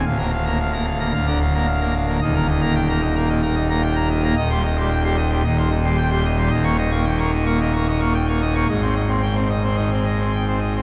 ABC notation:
X:1
M:4/4
L:1/16
Q:1/4=111
K:Bbmix
V:1 name="Pipe organ"
[D,,f] [B,b] f [B,b] f [B,b] f [B,b] [D,,f] [D,b] f [B,b] f [B,b] f [B,b] | [E,,e] [B,b] e [B,b] g [B,b] e [B,b] [B,,e] [B,b] e [B,b] g [B,b] e [B,b] | [K:Cm] [E,,e] [G,c'] e [G,c'] g [G,c'] e [G,c'] [E,,e] [E,c'] e [G,c'] g [G,c'] e [G,c'] | [E,,e] [B,_d'] e [B,d'] g [B,d'] e [B,d'] [B,,e] [B,d'] e [B,d'] g [B,d'] e [B,d'] |
[A,,e] [Cc'] e [Cc'] g [Cc'] e [Cc'] [E,e] [Cc'] e [Cc'] g [Cc'] e [Cc'] |]
V:2 name="Pipe organ" clef=bass
D,,,8 D,,,8 | E,,,16 | [K:Cm] E,,,8 E,,,8 | E,,,16 |
A,,,16 |]